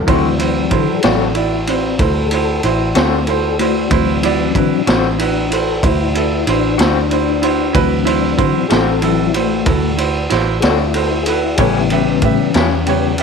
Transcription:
0.07 D2 D3 E3 F#3 A3 C4 E4 F#4 C5, kick, ride
0.39 C4 E4 F#4 C5, ride
0.70 D3 E4 F#4 A4 C5, kick, ride
1.01 A1 E3 F#3 C4 E4 F#4 G#4 D5, snare, ride
1.05 D3 A3 C4 A4
1.35 E4 F#4 D5, ride
1.67 C4 E4 F#4 C5, ride
1.99 D2 E4 F#4 A4 C5, kick, ride
2.26 G#4
2.31 E4 F#4 A4 C5, ride
2.63 A1 E4 F#4 C5, ride
2.95 D2 D3 A3 C4 E4 F#4 C5, snare, ride
3.27 E4 F#4 A4 C5, ride
3.59 A3 E4 F#4 C5, ride
3.89 D2 E3 F#3 C4 E4 F#4, kick, ride
3.93 C5
4.23 E4 F#4 D5, ride
4.50 C#4
4.55 D3 D4 E4 F#4 B4, kick, ride
4.87 A1 D3 A3 C4 E4 F#4 C5, snare, ride
5.19 D4 E4 F#4 B4, ride
5.51 E4 F#4 A4 C5, ride
5.83 D2 E4 F#4 C5, kick, ride
6.14 E4 F#4 A4, ride
6.47 A1 D4 E4 F#4 C5, ride
6.78 D2 D3 A3 C4 E4 F#4 C5, snare, ride
7.10 E4 F#4 C5, ride
7.42 E4 F#4 C5, ride
7.73 D2 E3 F#3 C4 E4 F#4 B4, kick, ride
8.05 E4 F#4 C5, ride
8.38 D3 E4 F#4 C5, kick, ride
8.68 A1 D3 A3 C4 E4 F#4 G#4 A4 C5, snare, ride
9.01 E3 F#3 C4 E4 F#4 A4, ride
9.34 A3 E4 F#4 C5, ride
9.66 D2 E4 F#4 A4, kick, ride
9.97 E4 F#4 C5, ride
10.30 A1 E4 F#4 C5, snare, ride
10.60 D2 D3 A3 C4 E4 F#4 G#4 D5, snare, ride
10.65 A4
10.80 E4
10.94 E4 F#4 A4 C5, ride
11.11 E4
11.23 E4 G#4, ride
11.27 F#4 A4 B4
11.44 E4
11.56 A1 A2 C#3 G3 G4 G#4 B4, kick, ride
11.60 B3 C#4 E4 A4 C#5
11.76 E4
11.90 E3 C#4 G4 B4 E5, ride
12.22 A2 G4 B4 E5, kick, ride
12.54 E2 A2 G3 C#4 E4 G4 B4 C#5, snare, ride
12.86 C#3 G3 B3 G4 B4 C#5, ride
13.18 G4 B4, ride

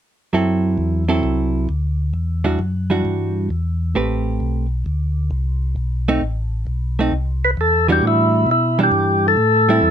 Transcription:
0.33 F#2 F#3 C4 E4 A4
0.78 E2
1.08 F#3 C4 E4 A4
1.23 C2
1.69 D2
2.14 E2
2.44 E3 G3 D4 F#4
2.59 F#2
2.90 E3 G3 D4 F#4
3.05 G2
3.50 E2
3.95 A1 A3 C4 G4 B4
4.40 B1
4.86 D2
5.31 C2
5.76 B1
6.08 A3 C4 D#4
6.21 A1
6.67 B1
6.99 A3 C4 D#4
7.12 C2
7.45 B4
7.57 E2 A4
7.88 E3 G3 D4 F#4 G4
8.02 A2
8.07 E4
8.46 B2
8.51 E4
8.79 E3 G3 D4
8.83 G4
8.92 G2
9.28 A4
9.37 A2
9.69 G3 C4 E4
9.82 E2

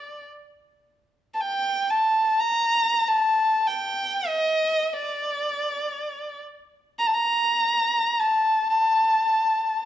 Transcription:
Already playing: D5
1.34 A5
1.41 G5
1.90 A5
2.39 A#5
3.08 A5
3.67 G5
4.28 D#5
4.93 D5
6.99 A#5
7.07 A5
7.14 A#5
8.20 A5
8.70 A5

